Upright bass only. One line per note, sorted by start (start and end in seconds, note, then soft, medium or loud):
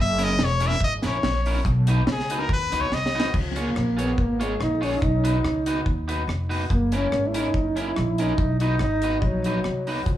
0.00 0.40 F#1 loud
0.40 0.75 E1 loud
0.81 1.00 G#1 loud
1.04 1.20 A#1 medium
1.23 1.59 A#1 loud
1.66 2.01 B1 loud
2.07 2.50 C#2 loud
2.50 2.68 D#2 loud
2.71 2.88 C#2 medium
2.90 3.26 C2 medium
3.34 3.69 C#2 loud
3.76 4.11 A#1 loud
4.18 4.54 G#1 medium
4.60 4.96 A#1 medium
5.02 5.38 B1 loud
5.44 5.80 C#2 loud
5.86 6.22 D#2 medium
6.27 6.63 F1 medium
6.70 7.06 F#1 loud
7.12 7.48 G#1 loud
7.54 7.90 F#1 medium
7.98 8.33 A#1 loud
8.38 8.74 B1 loud
8.80 9.16 G#1 loud
9.22 9.58 A#1 loud
9.66 10.01 C2 medium
10.06 10.18 C#2 loud